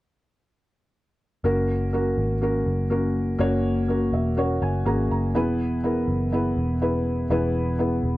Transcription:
1.44 2.14 F#1 medium
1.44 1.85 A#3 medium
1.44 1.86 C#4 medium
1.44 1.86 F#4 medium
1.44 1.86 A#4 medium
1.93 2.34 A#3 medium
1.93 2.35 C#4 medium
1.93 2.35 F#4 medium
1.93 2.35 A#4 medium
2.18 2.63 G#1 medium
2.41 2.83 A#3 medium
2.41 2.83 C#4 medium
2.41 2.84 F#4 medium
2.41 2.84 A#4 medium
2.66 3.36 F#1 medium
2.90 3.32 A#3 medium
2.90 3.32 C#4 medium
2.90 3.32 F#4 medium
2.90 3.33 A#4 medium
3.39 4.09 F#1 medium
3.39 3.80 A#3 medium
3.39 3.81 C#4 medium
3.39 3.81 F#4 medium
3.39 3.81 C#5 medium
3.88 4.30 A#3 medium
3.88 4.30 C#4 medium
3.88 4.30 F#4 medium
3.88 4.31 A#4 medium
4.13 4.58 E1 medium
4.13 4.36 E5 medium
4.37 4.78 A#3 medium
4.37 4.79 C#4 medium
4.37 4.79 F#4 medium
4.37 4.79 C#5 medium
4.37 4.60 F#5 medium
4.62 4.84 F#1 medium
4.62 4.85 G#5 medium
4.85 5.09 G#1 medium
4.85 5.27 A#3 medium
4.85 5.27 C#4 medium
4.85 5.28 F#4 medium
4.85 5.28 G#4 medium
4.85 5.09 A#5 medium
5.10 5.34 F#1 medium
5.10 5.34 A#5 medium
5.34 6.04 E1 medium
5.34 6.04 E3 medium
5.34 5.76 B3 medium
5.34 5.76 E4 medium
5.34 5.77 G#4 medium
5.34 5.77 B4 medium
5.83 6.25 B3 medium
5.83 6.25 E4 medium
5.83 6.25 G#4 medium
5.83 6.26 A#4 medium
6.08 6.53 F#1 medium
6.32 6.74 B3 medium
6.32 6.74 E4 medium
6.32 6.74 G#4 medium
6.32 6.75 B4 medium
6.57 7.27 E1 medium
6.81 7.23 B3 medium
6.81 7.23 E4 medium
6.81 7.23 G#4 medium
6.81 7.24 B4 medium
7.30 8.00 E1 medium
7.30 8.00 E3 medium
7.30 7.72 B3 medium
7.30 7.72 E4 medium
7.30 7.72 G#4 medium
7.30 7.72 B4 medium
7.79 8.17 B3 medium
7.79 8.17 E4 medium
7.79 8.17 G#4 medium
7.79 8.17 B4 medium
8.03 8.17 E1 medium

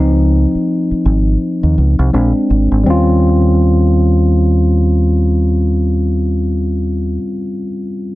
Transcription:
0.00 0.45 C#2 loud
0.00 2.09 F3 medium
0.00 2.09 C4 medium
0.00 2.10 D#4 medium
0.55 muted fingered electric bass stroke soft
0.91 muted fingered electric bass stroke soft
1.05 1.35 G#1 medium
1.63 1.75 D#2 medium
1.78 1.95 C#2 medium
1.99 2.11 C2 loud
2.13 2.31 A#1 loud
2.13 2.82 G#3 medium
2.13 2.82 C4 medium
2.13 2.82 D4 medium
2.50 2.67 G#1 medium
2.71 2.83 G#1 medium
2.84 7.17 D#2 loud
2.84 7.14 G3 medium
2.84 7.17 C4 medium
2.88 7.19 C#4 medium
2.88 7.21 F4 loud

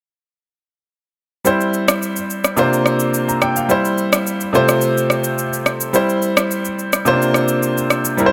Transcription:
1.45 2.14 G3 medium
1.45 2.15 C4 medium
1.45 2.15 E4 medium
1.45 2.16 C5 medium
1.45 shaker medium
1.61 shaker soft
1.74 shaker soft
1.88 cross-stick loud
1.88 shaker medium
2.02 shaker medium
2.16 shaker medium
2.30 shaker soft
2.44 cross-stick medium
2.44 shaker medium
2.57 3.27 C3 medium
2.57 3.27 A#3 medium
2.57 3.27 D4 medium
2.57 3.27 F4 medium
2.57 3.28 C5 medium
2.57 shaker medium
2.73 shaker medium
2.86 cross-stick medium
2.86 shaker soft
3.00 shaker medium
3.14 shaker medium
3.28 3.41 A#5 medium
3.28 shaker medium
3.42 3.56 G5 medium
3.42 cross-stick medium
3.42 shaker soft
3.56 3.83 F5 medium
3.56 shaker medium
3.69 4.39 G3 medium
3.69 4.39 C4 medium
3.69 4.40 E4 medium
3.69 4.40 C5 medium
3.69 shaker medium
3.85 shaker soft
3.98 shaker soft
4.13 cross-stick loud
4.13 shaker medium
4.27 shaker medium
4.41 shaker medium
4.53 5.43 C3 medium
4.53 5.44 A3 medium
4.53 5.44 C4 medium
4.53 5.44 F4 medium
4.53 5.45 C5 medium
4.53 shaker soft
4.69 cross-stick medium
4.69 shaker medium
4.81 shaker medium
4.98 shaker medium
5.10 cross-stick medium
5.10 shaker soft
5.24 shaker medium
5.38 shaker medium
5.53 shaker medium
5.66 cross-stick medium
5.66 shaker soft
5.81 shaker medium
5.93 6.63 G3 medium
5.93 6.63 C4 medium
5.93 6.64 E4 medium
5.93 6.64 C5 medium
5.93 shaker medium
6.09 shaker soft
6.22 shaker soft
6.37 cross-stick loud
6.37 shaker medium
6.51 shaker medium
6.65 shaker soft
6.79 shaker soft
6.93 cross-stick medium
6.93 shaker medium
7.05 7.75 C3 medium
7.05 7.75 A#3 medium
7.05 7.13 C#4 medium
7.05 7.76 F4 medium
7.05 7.76 C5 loud
7.05 shaker medium
7.13 7.79 D4 medium
7.22 shaker medium
7.34 cross-stick medium
7.34 shaker soft
7.48 shaker medium
7.63 shaker medium
7.78 shaker medium
7.90 cross-stick medium
7.90 shaker soft
8.05 shaker medium
8.17 8.32 G3 medium
8.17 8.32 C4 medium
8.17 8.32 E4 medium
8.17 8.26 A#4 medium
8.17 shaker medium
8.26 8.32 C5 medium

